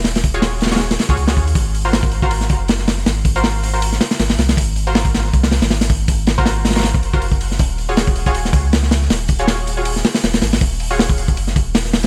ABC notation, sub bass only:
X:1
M:4/4
L:1/16
Q:"Swing 16ths" 1/4=159
K:Ebdor
V:1 name="Sub bass" clef=bass
E,,,8- E,,,2 z D,, D,,2 E,,2 | A,,,8- A,,,2 G,,,6 | A,,,8- A,,,2 z2 A,,,2 C,,2 | A,,,8 C,,3 A,,,4- A,,, |
A,,,8- A,,,2 G,,,6 | E,,,8- E,,,2 D,,6 | E,,,8- E,,,2 z2 E,,,2 A,,,2 | E,,,8 G,,,3 E,,,4- E,,, |]